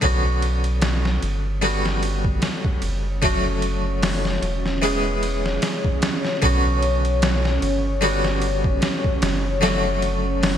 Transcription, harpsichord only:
0.01 1.55 D3 medium
0.01 1.55 B3 medium
0.01 1.56 C#4 medium
0.01 1.57 F#4 medium
1.62 3.15 D3 medium
1.62 3.15 G3 medium
1.62 3.16 B3 medium
1.62 3.16 F#4 medium
3.22 4.75 D3 medium
3.22 4.76 F#3 medium
3.22 4.76 A3 medium
3.22 4.77 F#4 medium
4.82 6.35 E3 medium
4.82 6.35 G#3 medium
4.82 6.36 B3 medium
4.82 6.36 G#4 medium
6.42 7.95 D3 medium
6.42 7.95 B3 medium
6.42 7.96 C#4 medium
6.42 7.97 F#4 medium
8.01 9.55 D3 medium
8.01 9.55 G3 medium
8.01 9.55 B3 medium
8.01 9.56 F#4 medium
9.61 10.58 D3 medium
9.61 10.58 F#3 medium
9.61 10.58 A3 medium
9.61 10.58 F#4 medium

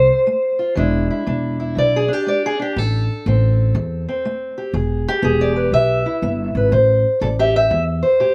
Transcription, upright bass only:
0.77 1.08 E1 loud
1.27 1.73 E1 medium
1.77 2.07 B1 medium
2.76 3.06 A1 medium
3.26 3.72 A1 medium
3.75 4.05 E2 medium
4.74 5.04 E1 medium
5.23 5.69 E1 loud
5.72 6.03 B1 medium
6.22 6.52 G1 medium
6.55 6.70 G#1 medium
6.72 7.02 A1 medium
7.21 7.68 A1 medium
7.71 8.01 E2 medium

